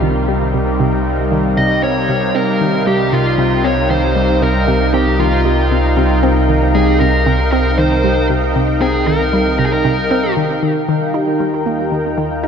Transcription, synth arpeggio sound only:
0.02 D#3
0.28 G3
0.54 C3
0.80 C3
1.32 D#3
1.58 C3
1.83 C4
2.09 C3
2.35 C4
2.61 D#3
2.87 G3
3.13 C3
3.38 C3
3.64 C4
3.90 D#3
4.16 G3
4.42 C3
4.68 C3
4.94 C4
5.19 D#3
5.45 G3
5.71 C3
5.97 C3
6.23 C4
6.49 D#3
6.75 G3
7.01 C3
7.26 C3
7.52 C4
7.78 D#3
8.04 G3
8.30 C3
8.56 C3
8.81 C4
9.07 D#3
9.33 G3
9.59 C3
9.85 C3
10.11 C4
10.37 D#3
10.63 D#3
10.88 D#3
11.14 D#4
11.40 G3
11.66 A#3
11.92 D#3
12.18 D#3
12.44 D#4

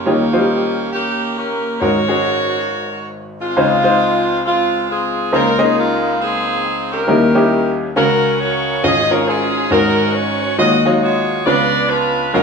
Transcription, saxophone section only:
Already playing: A#3 C#4 G4
0.93 A#3 C#4 G4
1.37 C#4 G4 A#4
1.80 F#4 A#4 C#5
3.41 G#3 C4 F4
4.46 G#3 C4 F4
4.90 C4 F4 G#4
5.34 D#4 F4 A#4
5.62 G#4
5.78 G#3 A#3 F4
6.21 C4 D#4 G#4
6.92 C#4 G4 A#4
7.96 C#4 F#4 A#4
8.40 F#4 A#4 C#5
8.83 G#4 D#5
9.11 C#5
9.28 C#4 F4 G#4
9.72 C#4 F#4 A#4
10.14 C#5
10.42 C#5
10.58 F#4 G#4 D#5
10.85 D#5
11.02 F4 F#4 C#5
11.45 F4 B4 D5
11.89 D4 F4 B4
12.33 C#4 F4 A#4

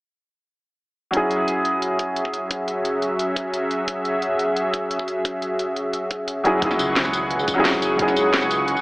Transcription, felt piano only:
1.11 F#3 C#4 E4
1.16 G#4
6.44 F#3 C#4 E4 G#4
6.59 F#3 C#4 E4
6.65 G#4
7.54 F#3 C#4 E4
7.60 G#4
7.96 F#3 C#4 E4
8.02 G#4

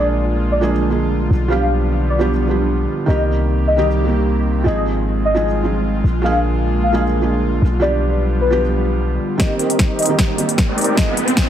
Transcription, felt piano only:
Already playing: F3 G#3 A#3 D4 G#4
0.61 F3 G#3 A#3 D4 G#4
0.90 F3 G#3 A#3 D4 G#4
1.48 F3 G3 B3 D4 G4
2.19 F3 G3 B3 D4 G4
2.47 F3 G3 B3 D4 G4
3.06 D#3 G3 A#3 C4 G4
3.77 D#3 G3 A#3 C4 G4
4.05 D#3 G3 A#3 C4 G4
4.64 F3 G#3 C4 D#4
4.68 G#4
5.35 F3 G#3 C4 D#4 G#4
5.64 F3 G#3 C4 D#4 G#4
6.22 F3 G#3 A#3 D4 G#4
6.92 F3 G#3 A#3 D4 G#4
7.21 F3 G#3 A#3 D4 G#4
7.80 F3 G3 B3 D4
7.84 G4
8.50 F3 G3 B3 D4 G4
9.38 D#3 G3 A#3 C4
9.42 G4
10.08 D#3 G3 A#3 C4 G4
10.36 D#3 G3 A#3 C4
10.40 G4
10.95 F3 G#3 C4 D#4
10.99 G#4

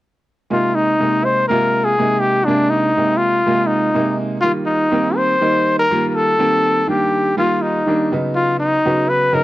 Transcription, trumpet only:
0.52 F4
0.75 D#4
1.25 C5
1.48 A#4
1.85 G#4
2.20 G4
2.45 D4
2.70 D#4
3.17 F4
3.67 D#4
4.41 F4
4.66 D#4
5.16 C5
5.79 A#4
6.09 A#4
6.15 A4
6.90 G4
7.38 F4
7.62 D#4
8.35 F4
8.60 D#4
9.09 B4
9.34 A#4

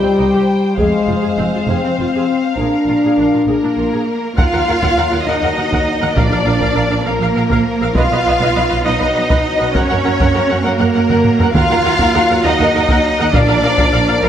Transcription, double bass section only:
0.18 C2
0.79 F1
1.08 F1
1.38 F1
1.68 F1
1.98 F1
2.57 A#1
2.87 A#1
3.17 A#1
3.46 A#1
3.77 A#1
4.37 D#2
4.53 D#2
4.67 D#2
4.82 D#2
4.97 D#2
5.12 D#2
5.26 D#2
5.43 D#2
5.57 D#2
5.72 D#2
6.02 D#2
6.16 A#1
6.32 A#1
6.46 A#1
6.60 A#1
6.76 A#1
6.91 A#1
7.05 A#1
7.20 A#1
7.36 A#1
7.51 A#1
7.81 A#1
7.96 B1
8.11 B1
8.26 B1
8.41 B1
8.56 B1
8.72 B1
8.86 B1
9.01 B1
9.16 B1
9.31 B1
9.60 B1
9.76 F#2
9.91 F#2
10.06 F#2
10.20 F#2
10.35 F#2
10.50 F#2
10.65 F#2
10.80 F#2
10.96 F#2
11.10 F#2
11.41 F#2
11.55 D#2
11.70 D#2
11.85 D#2
12.00 D#2
12.14 D#2
12.30 D#2
12.44 D#2
12.60 D#2
12.76 D#2
12.91 D#2
13.20 D#2
13.35 A#1
13.49 A#1
13.64 A#1
13.79 A#1
13.93 A#1
14.07 A#1
14.23 A#1

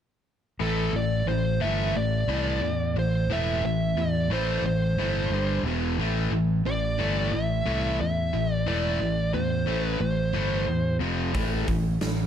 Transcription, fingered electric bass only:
0.60 A1
0.93 A1
1.26 A1
1.61 G1
1.95 A1
2.28 C2
2.61 E2
2.94 A1
3.27 E1
3.61 A1
3.95 E2
4.29 A1
4.62 A1
4.96 G1
5.30 G1
5.63 E1
5.98 A1
6.31 A1
6.65 A1
6.99 G1
7.33 A1
7.66 C2
8.00 E2
8.34 A1
8.68 E1
9.00 A1
9.33 E2
9.67 A1
10.00 A1
10.33 G1
10.68 E2
11.01 F1
11.34 A1
11.68 A1
12.02 A1

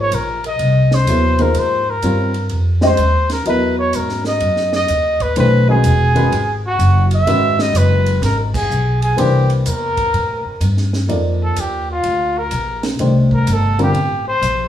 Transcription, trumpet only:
0.00 C#5
0.14 A#4
0.46 D#5
0.94 C5
1.42 A#4
1.59 C5
1.90 A#4
2.86 C5
3.33 A#4
3.48 B4
3.79 C#5
3.95 A#4
4.27 D#5
4.75 D#5
5.22 B4
5.39 B4
5.70 G#4
6.66 F#4
7.14 E5
7.61 D#5
7.77 B4
8.24 A#4
8.55 G#4
9.03 G#4
9.20 G4
9.67 A#4
11.43 A4
11.60 G4
11.91 F4
12.38 A#4
13.33 A#4
13.53 A4
13.82 G4
14.28 C5

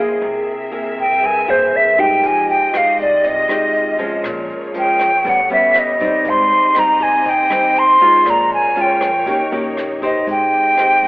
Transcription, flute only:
1.00 G5
1.26 G#5
1.50 C5
1.76 E5
2.00 G5
2.27 G#5
2.50 G5
2.77 F5
3.01 D5
3.28 D#5
4.79 G5
5.29 F#5
5.53 E5
5.79 D#5
6.29 C6
6.79 A#5
7.03 G#5
7.29 G5
7.79 C6
8.30 A#5
8.54 G#5
8.81 G5
10.05 D#5
10.31 G5

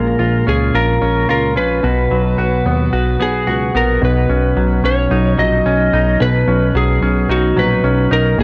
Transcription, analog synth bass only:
Already playing: A#1
0.20 A#1
0.47 C#2
0.75 A#1
1.02 A#1
1.30 C#2
1.57 A#1
1.84 B1
2.11 B1
2.39 B1
2.66 D#2
2.93 B1
3.20 B1
3.47 C#2
3.75 A#1
4.02 B1
4.29 B1
4.57 B1
4.84 B1
5.11 B1
5.38 A#1
5.66 B1
5.93 B1
6.20 B1
6.48 B1
6.75 B1
7.02 B1
7.29 B1
7.57 A#1
7.84 B1
8.11 B1
8.38 A#1

